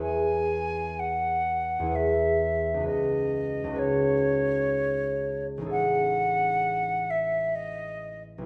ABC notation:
X:1
M:3/4
L:1/8
Q:1/4=64
K:E
V:1 name="Flute"
g2 f2 e2 | d2 c4 | f3 e d z |]
V:2 name="Harp"
[E,,EGBc]4 [E,,EGBc]2 | [C,,DFBc]2 [C,,DFBc]4 | [A,,,DGAc]6 |]